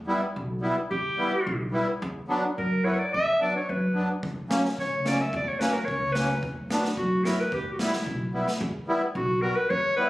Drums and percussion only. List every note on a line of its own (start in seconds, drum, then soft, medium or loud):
4.23 kick medium
4.51 snare medium
4.65 snare medium
4.78 kick medium
4.78 snare soft
5.06 snare medium
5.33 kick medium
5.61 snare medium
5.88 kick medium
6.15 snare medium
6.43 kick medium
6.71 snare medium
6.84 snare medium
6.97 kick medium
7.25 snare medium
7.52 kick medium
7.79 snare medium
7.93 snare medium
8.06 kick medium
8.48 snare medium